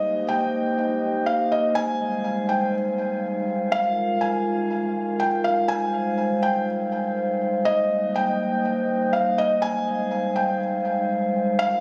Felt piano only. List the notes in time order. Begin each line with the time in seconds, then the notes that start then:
Already playing: D#5
0.29 G5
1.26 F5
1.52 D#5
1.75 G#5
2.49 G5
3.72 F5
4.21 G#5
5.20 G5
5.44 F5
5.68 G#5
6.43 G5
7.65 D#5
8.16 G5
9.13 F5
9.38 D#5
9.62 G#5
10.36 G5
11.59 F5